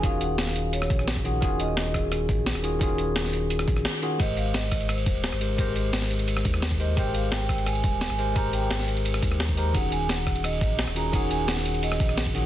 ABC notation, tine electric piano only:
X:1
M:4/4
L:1/8
Q:1/4=173
K:Ab
V:1 name="Tine electric piano"
[E,DF_GA]4- [E,DFGA] z2 [E,DFGA] | [E,DF_GA]4- [E,DFGA] z2 [E,DFGA] | [E,DF_GA]4- [E,DFGA] z2 [E,DFGA] | [A,GBc]4- [A,GBc] z2 [A,GBc] |
[A,GBc]4- [A,GBc] z2 [A,GBc] | [A,GBc]4- [A,GBc] z2 [A,GBc] | [A,GBc]4- [A,GBc] z2 [A,GBc] | [E,DE_GA]4- [E,DEGA] z2 [E,DFGA] |
[E,DE_GA]4- [E,DEGA] z2 [E,DFGA] |]